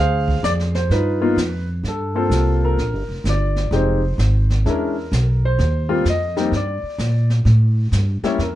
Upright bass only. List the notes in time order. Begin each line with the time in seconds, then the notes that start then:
Already playing: D2
0.43 F2
0.90 G2
1.36 F2
1.83 G2
2.30 C2
2.77 A#1
2.93 G1
3.08 F1
3.24 G1
3.71 F1
4.18 G#1
4.65 E2
5.12 B1
5.59 D#2
6.05 F2
6.52 G2
6.83 muted upright bass stroke
6.98 A#2
7.45 A2
7.92 G2
8.23 muted upright bass stroke
8.38 F2